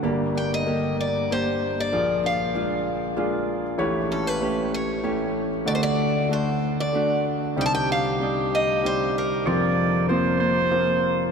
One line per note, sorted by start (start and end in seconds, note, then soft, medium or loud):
0.00 1.88 G1 medium
0.00 1.88 G2 medium
0.00 0.49 A#3 medium
0.00 0.66 A#3 medium
0.00 0.52 C4 medium
0.00 0.35 D4 soft
0.00 0.49 D4 medium
0.00 0.10 F#4 medium
0.00 0.50 G4 medium
0.00 0.49 D5 medium
0.04 0.67 G4 medium
0.35 1.31 D4 soft
0.35 0.51 G5 medium
0.54 0.96 D#5 medium
0.66 1.12 D3 soft
0.66 1.13 A#3 medium
0.66 1.30 A#3 soft
0.66 1.13 G4 soft
0.66 1.31 G4 medium
0.66 1.13 A#4 medium
1.01 1.32 D5 medium
1.30 1.76 A#3 medium
1.30 4.47 A#3 soft
1.30 1.76 D4 soft
1.30 2.23 D4 soft
1.30 1.76 G4 medium
1.30 2.61 G4 medium
1.30 1.79 C5 medium
1.30 1.76 D5 medium
1.80 2.22 D5 medium
1.92 3.75 A#1 medium
1.92 3.75 A#2 medium
1.92 3.83 F3 medium
1.92 2.38 A#3 medium
1.92 2.38 F4 medium
1.92 2.56 F4 medium
1.92 2.38 G#4 medium
1.92 2.38 D5 medium
2.24 2.55 D4 soft
2.24 3.45 F5 medium
2.54 3.15 G#3 soft
2.54 3.00 A#3 soft
2.54 3.17 D4 soft
2.54 3.00 F4 soft
2.54 3.17 F4 medium
2.54 3.00 G#4 medium
2.54 3.00 D5 medium
3.16 3.83 G#3 medium
3.16 3.62 A#3 medium
3.16 4.17 D4 medium
3.16 3.62 F4 medium
3.16 3.85 F4 medium
3.16 3.62 G#4 medium
3.16 3.62 D5 medium
3.78 5.62 A1 medium
3.78 5.62 A2 medium
3.78 5.71 E3 medium
3.78 4.24 A3 medium
3.78 4.24 E4 medium
3.78 4.24 G4 medium
3.78 4.42 G4 medium
3.78 4.24 C#5 medium
4.11 4.42 C#4 soft
4.11 4.27 A4 medium
4.27 4.74 B4 medium
4.41 4.87 A3 medium
4.41 5.03 A3 soft
4.41 5.04 C#4 soft
4.41 4.87 E4 medium
4.41 4.87 G4 soft
4.41 5.04 G4 medium
4.41 4.87 C#5 medium
4.74 5.67 C#5 medium
5.03 5.49 A3 medium
5.03 5.67 A3 medium
5.03 6.04 C#4 medium
5.03 5.49 E4 medium
5.03 5.49 G4 medium
5.03 5.74 G4 medium
5.03 5.50 C#5 medium
5.65 7.53 D2 medium
5.65 7.53 D3 medium
5.65 6.12 A3 medium
5.65 6.30 A3 medium
5.65 6.12 D4 medium
5.65 6.12 F#4 medium
5.65 6.31 F#4 medium
5.65 6.12 D5 medium
5.65 5.73 D5 medium
5.75 5.81 C5 medium
5.83 6.27 D5 medium
5.98 6.30 D4 soft
6.29 6.76 A3 medium
6.29 6.94 A3 soft
6.29 6.76 D4 soft
6.29 6.94 D4 soft
6.29 6.76 F#4 soft
6.29 6.95 F#4 medium
6.29 6.76 A4 medium
6.29 6.80 C5 medium
6.80 7.24 D5 medium
6.93 7.40 A3 soft
6.93 10.15 A3 medium
6.93 7.40 D4 soft
6.93 8.21 D4 medium
6.93 7.40 F#4 medium
6.93 8.27 F#4 medium
6.93 7.40 D5 medium
7.56 9.42 C2 medium
7.56 9.42 C3 medium
7.56 8.20 G3 medium
7.56 8.03 C4 medium
7.56 8.04 D#4 medium
7.56 8.22 D#4 medium
7.56 8.04 G4 medium
7.56 9.48 G4 medium
7.56 8.04 D5 medium
7.61 7.65 G5 medium
7.66 7.72 A5 medium
7.75 7.89 G5 medium
7.92 8.54 F5 medium
8.20 8.83 G3 soft
8.20 8.66 C4 medium
8.20 11.01 D4 soft
8.20 8.67 D#4 soft
8.20 10.93 D#4 medium
8.20 8.67 G4 medium
8.20 8.67 D5 medium
8.55 8.86 D#5 medium
8.83 9.51 G3 medium
8.83 9.29 C4 medium
8.83 9.30 D#4 medium
8.83 9.30 G4 medium
8.83 9.17 C5 medium
8.83 9.30 D5 medium
9.18 9.75 A#4 medium
9.46 11.29 F1 medium
9.46 11.29 F2 medium
9.46 10.08 F3 medium
9.46 9.92 A#3 medium
9.46 9.92 C4 medium
9.46 10.10 C4 medium
9.46 9.92 F4 medium
9.46 9.93 C5 medium
9.46 10.08 D5 medium
10.08 10.70 F3 medium
10.08 10.54 A#3 medium
10.08 10.40 A#3 medium
10.08 10.55 C4 medium
10.08 11.32 C4 medium
10.08 10.55 F4 medium
10.08 10.37 C5 medium
10.08 10.55 C5 medium
10.40 11.32 A#3 medium
10.40 11.32 C5 medium
10.71 11.32 F3 medium
10.71 11.17 A#3 medium
10.71 11.17 C4 medium
10.71 11.17 F4 medium
10.71 11.17 C5 medium